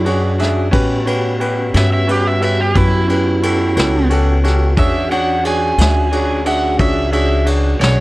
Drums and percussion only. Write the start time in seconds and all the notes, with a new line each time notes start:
0.06 ride
0.39 snare, ride
0.73 kick, ride
1.07 ride
1.41 ride
1.74 snare, ride
2.09 ride
2.42 ride
2.75 kick, ride
3.09 ride
3.43 ride
3.77 snare, ride
4.10 ride
4.44 snare, ride
4.77 kick, ride
5.11 ride
5.45 ride
5.78 snare, ride
6.12 ride
6.46 ride
6.79 kick, ride
7.13 ride
7.46 ride
7.81 snare, ride